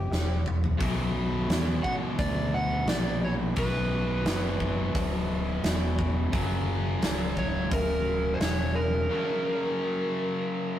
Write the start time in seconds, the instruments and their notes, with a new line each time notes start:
Already playing: electric slide guitar G4
0.11 fingered electric bass E1, snare
0.46 mid tom
0.64 floor tom
0.78 overdriven electric guitar B1 F#2 B2, fingered electric bass B1, kick, open hi-hat
1.49 fingered electric bass E2, snare, open hi-hat
1.83 electric slide guitar F#5, muted fingered electric bass stroke, kick
2.19 fingered electric bass D2, electric slide guitar D5, kick, open hi-hat
2.54 electric slide guitar F#5
2.86 fingered electric bass A#1, electric slide guitar D5, snare, open hi-hat
3.24 electric slide guitar C#5
3.56 overdriven electric guitar B1 F#2 B2, fingered electric bass B1, electric slide guitar B4, kick, open hi-hat
4.25 fingered electric bass F#1, snare, open hi-hat
4.60 kick
4.95 fingered electric bass D1, kick, open hi-hat
5.63 fingered electric bass E1, snare, open hi-hat
5.99 kick
6.32 fingered electric bass F#1, overdriven electric guitar F#2 C#3 F#3, kick, open hi-hat
7.01 fingered electric bass C#1, snare, open hi-hat
7.37 electric slide guitar C#5, kick
7.71 fingered electric bass D1, electric slide guitar A#4, kick, open hi-hat
8.34 electric slide guitar C5
8.40 fingered electric bass E1, electric slide guitar C#5, snare, open hi-hat
8.75 electric slide guitar A#4
9.09 overdriven electric guitar F#2 C#3 F#3